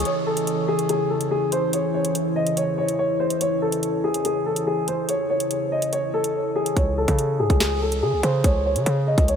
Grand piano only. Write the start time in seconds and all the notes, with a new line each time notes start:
0.05 C#5
0.26 A4
0.68 G#4
0.89 G#4
1.10 A4
1.31 G#4
1.52 C5
1.73 C#5
1.94 C#5
2.36 D#5
2.57 C#5
2.78 C#5
2.99 C#5
3.20 C5
3.41 C#5
3.62 A4
4.04 G#4
4.25 G#4
4.46 A4
4.67 G#4
4.88 C5
5.09 C#5
5.30 C#5
5.72 D#5
5.93 C#5
6.14 A4
6.56 G#4
6.77 C#5
6.98 A4
7.39 G#4
7.61 G#4
7.82 A4
8.03 G#4
8.24 C5
8.44 C#5
8.65 C#5
9.07 D#5
9.28 C#5